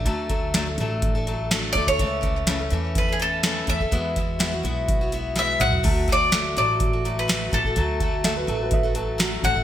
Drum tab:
CC |----------------|----------------|----------------|x---------------|
HH |x-x-x-x-x-x-x-x-|x-x-x-x-x-x-x-x-|x-x-x-x-x-x-x-x-|x-x-x-x-x-x-x-x-|
SD |----o-------o---|----o-------o---|----o-------o---|----o-------o---|
T2 |----------------|----------------|--------------o-|----------------|
FT |----------------|----------------|---------------o|----------------|
BD |o-o-----o-----oo|o-o-----o-----oo|o-o-----o-------|o-o-----o-----oo|

CC |----------------|
HH |x-x-x-x-x-x-x-x-|
SD |----o-------o---|
T2 |----------------|
FT |----------------|
BD |o-o-----o-----oo|